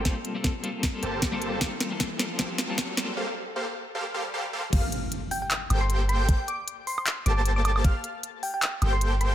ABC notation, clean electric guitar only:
X:1
M:4/4
L:1/16
Q:"Swing 16ths" 1/4=154
K:Gm
V:1 name="Clean electric guitar"
[G,B,CFA]3 [G,B,CFA]3 [G,B,CFA]3 [G,B,CFA] z3 [G,B,CFA]3 | [B,CFA]3 [G,B,CFA]3 [G,B,CFA]2 [G,B,CFA]3 [G,B,CFA]3 [G,B,CFA]2 | z16 | z16 |
z16 | z16 |]